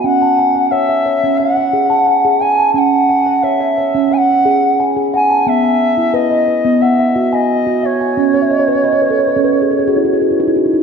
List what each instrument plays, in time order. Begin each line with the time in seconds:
Already playing: steel tongue drum E5 G#5
0.04 steel tongue drum C#4, bansuri F#5
0.22 steel tongue drum A5
0.38 steel tongue drum G#5
0.55 steel tongue drum F#5
0.71 steel tongue drum C#5, bansuri E5
0.89 steel tongue drum E5
1.06 steel tongue drum C#5
1.24 steel tongue drum C#4
1.37 steel tongue drum E5, bansuri F#5
1.57 steel tongue drum F#5
1.73 steel tongue drum G#4
1.90 steel tongue drum A5
2.07 steel tongue drum G#5
2.25 steel tongue drum G#4
2.41 steel tongue drum F#5, bansuri G#5
2.59 steel tongue drum A5
2.74 steel tongue drum C#4, bansuri G#5
2.78 bansuri F#5
3.10 steel tongue drum G#5
3.26 steel tongue drum F#5
3.43 steel tongue drum C#5, bansuri E5
3.60 steel tongue drum E5
3.78 steel tongue drum C#5
3.95 steel tongue drum C#4
4.12 steel tongue drum E5, bansuri G#5
4.17 bansuri F#5
4.45 steel tongue drum G#4
4.80 steel tongue drum G#5
4.96 steel tongue drum G#4
5.14 steel tongue drum F#5, bansuri G#5
5.30 steel tongue drum A5
5.47 steel tongue drum B3, bansuri E5
5.63 steel tongue drum G#5
5.97 steel tongue drum E4
6.14 steel tongue drum B4, bansuri D#5
6.31 steel tongue drum D#5
6.48 steel tongue drum B4
6.65 steel tongue drum B3
6.81 bansuri E5, steel tongue drum F#5
6.99 steel tongue drum E5
7.16 steel tongue drum F#4
7.33 bansuri D#5, steel tongue drum G#5
7.67 steel tongue drum F#4
7.83 bansuri C#5, steel tongue drum E5
8.01 steel tongue drum G#5
8.17 steel tongue drum C#4
8.34 steel tongue drum C#5
8.42 steel tongue drum E5
8.51 steel tongue drum D#5
8.59 steel tongue drum C#5
8.68 steel tongue drum B4
8.75 steel tongue drum C#5
8.84 steel tongue drum C#5 D#5
8.93 steel tongue drum C#5
9.02 steel tongue drum B4
9.11 steel tongue drum A4
9.19 steel tongue drum C#5
9.27 steel tongue drum B4
9.36 steel tongue drum C#4 A4
9.44 steel tongue drum B4
9.53 steel tongue drum A4
9.62 steel tongue drum G#4
9.71 steel tongue drum A4
9.79 steel tongue drum G#4
9.87 steel tongue drum F#4 G#4
9.96 steel tongue drum E4
10.05 steel tongue drum F#4
10.13 steel tongue drum G#4
10.22 steel tongue drum F#4
10.31 steel tongue drum E4
10.40 steel tongue drum D#4 G#4
10.48 steel tongue drum E4
10.56 steel tongue drum F#4
10.66 steel tongue drum E4
10.74 steel tongue drum D#4